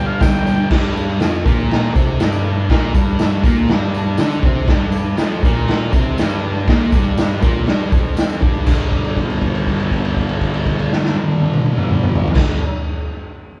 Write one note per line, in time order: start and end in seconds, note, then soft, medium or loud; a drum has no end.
0.00 0.19 G2 medium
0.00 0.22 D3 medium
0.00 0.24 G3 medium
0.07 0.22 F5 medium
0.20 0.69 G2 medium
0.20 0.49 D3 medium
0.20 0.69 G5 loud
0.20 kick loud
0.20 snare loud
0.20 tambourine loud
0.20 crash medium
0.25 0.45 G3 medium
0.46 0.69 G3 medium
0.46 tambourine medium
0.50 0.71 D3 medium
0.71 1.19 G2 medium
0.71 1.20 G3 loud
0.71 kick loud
0.71 snare loud
0.71 crash loud
0.71 tambourine soft
0.71 crash medium
0.97 tambourine medium
1.10 tambourine soft
1.20 1.44 F2 medium
1.20 1.45 F3 loud
1.20 snare loud
1.20 tambourine medium
1.20 crash medium
1.36 tambourine soft
1.45 1.93 A#2 medium
1.45 1.94 A#3 loud
1.45 kick loud
1.45 tambourine medium
1.71 snare loud
1.71 crash medium
1.94 2.18 C3 medium
1.94 2.19 C4 loud
1.94 kick loud
1.94 tambourine medium
2.20 2.69 G2 loud
2.20 2.69 G3 loud
2.20 snare loud
2.20 tambourine loud
2.20 crash medium
2.32 tambourine medium
2.70 2.94 A#2 medium
2.70 2.94 A#3 loud
2.70 kick loud
2.70 snare loud
2.70 tambourine soft
2.70 crash medium
2.93 3.43 G2 loud
2.93 3.43 G3 loud
2.93 kick loud
2.93 tambourine medium
3.08 tambourine soft
3.19 snare loud
3.19 tambourine loud
3.19 crash medium
3.33 tambourine soft
3.44 3.68 A#2 medium
3.44 3.68 A#3 loud
3.44 kick loud
3.44 tambourine medium
3.57 tambourine soft
3.69 4.18 G2 medium
3.69 4.19 G3 loud
3.69 snare loud
3.69 crash medium
3.94 tambourine medium
4.17 4.43 D3 loud
4.17 4.44 D4 loud
4.17 snare loud
4.17 tambourine loud
4.17 crash medium
4.31 tambourine medium
4.43 4.68 C3 medium
4.43 4.68 C4 loud
4.43 kick loud
4.68 5.17 G2 loud
4.68 5.18 G3 loud
4.68 kick loud
4.68 snare loud
4.68 tambourine soft
4.68 crash medium
4.92 tambourine medium
5.17 5.42 F2 medium
5.17 5.43 F3 loud
5.17 snare loud
5.17 tambourine loud
5.17 crash medium
5.43 5.92 A#2 medium
5.43 5.93 A#3 loud
5.43 kick loud
5.43 tambourine medium
5.56 tambourine soft
5.68 snare loud
5.68 crash medium
5.93 6.17 C3 medium
5.93 6.18 C4 loud
5.93 kick loud
5.93 tambourine medium
6.17 6.67 G2 loud
6.17 6.67 G3 loud
6.17 snare loud
6.17 tambourine loud
6.17 crash medium
6.30 tambourine medium
6.67 6.92 A#2 medium
6.67 6.93 A#3 loud
6.67 kick loud
6.67 snare loud
6.67 tambourine soft
6.67 crash medium
6.81 tambourine soft
6.91 7.41 G2 medium
6.91 7.42 G3 loud
6.91 kick loud
6.91 tambourine medium
7.04 tambourine soft
7.17 snare loud
7.17 tambourine loud
7.17 crash medium
7.41 7.66 A#2 medium
7.41 7.66 A#3 loud
7.41 kick loud
7.41 tambourine medium
7.55 tambourine soft
7.67 7.91 G2 loud
7.67 7.92 G3 loud
7.67 snare loud
7.67 crash medium
7.80 tambourine soft
7.92 8.41 F2 medium
7.92 8.42 F3 loud
7.92 kick loud
7.92 tambourine medium
8.06 tambourine soft
8.17 snare loud
8.17 tambourine loud
8.17 crash medium
8.30 tambourine medium
8.41 8.64 G2 medium
8.41 8.66 G3 loud
8.41 kick loud
8.54 tambourine soft
8.65 12.29 G2 loud
8.65 12.30 D3 loud
8.65 12.31 G3 loud
8.65 kick loud
8.65 crash loud
8.65 tambourine medium
8.92 kick medium
8.92 crash soft
9.04 crash soft
9.16 kick medium
9.16 crash soft
9.30 crash soft
9.41 kick medium
9.41 crash soft
9.55 crash soft
9.67 kick medium
9.67 crash soft
9.79 crash medium
9.91 kick medium
9.91 crash soft
10.05 crash medium
10.16 kick medium
10.16 crash medium
10.29 crash medium
10.41 kick medium
10.41 crash medium
10.54 crash medium
10.66 kick medium
10.66 crash medium
10.79 crash medium
10.93 snare medium
11.05 snare medium
11.16 high tom medium
11.29 high tom medium
11.40 high tom loud
11.53 mid tom loud
11.66 mid tom loud
11.78 mid tom loud
11.91 mid tom loud
12.04 mid tom loud
12.15 floor tom loud
12.28 floor tom loud
12.34 12.57 G2 loud
12.34 12.58 D3 loud
12.34 kick loud
12.34 snare loud
12.34 crash loud
12.38 12.59 G3 loud